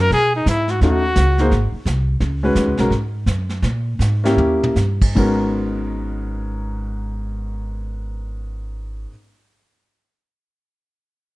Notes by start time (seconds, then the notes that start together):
0.00 A#4
0.11 B2 G#4, brush sweep, kick, snare
0.36 D#4
0.46 G#2 E4, kick, snare, hi-hat pedal
0.68 F#4, snare
0.81 D#2 A3 C#4 D#4 F#4, brush sweep, kick, snare
1.16 C#2, kick, snare, hi-hat pedal
1.38 A#3 D#4 G#4 C5, snare
1.51 G#1, brush sweep, kick, snare
1.72 muted upright bass stroke
1.85 C2, kick, snare, hi-hat pedal
2.20 C#2, brush sweep, kick, snare
2.43 G#3 C#4 F#4 B4
2.55 D#2, kick, snare, hi-hat pedal
2.67 C#2
2.77 B1 G#3 C#4 F#4 A#4, snare
2.90 G#2, brush sweep, kick, snare
3.26 F#2, kick, snare, hi-hat pedal
3.49 snare
3.62 A#2, brush sweep, kick, snare
3.99 G#2, snare, hi-hat pedal
4.24 A#3 C#4 E4 G4, snare
4.36 D#2, floor tom
4.63 mid tom
4.76 G2, snare, hi-hat pedal
5.02 kick, crash
5.15 G#1 G#2 G#3 B3 C#4 F#4 A#4, kick, crash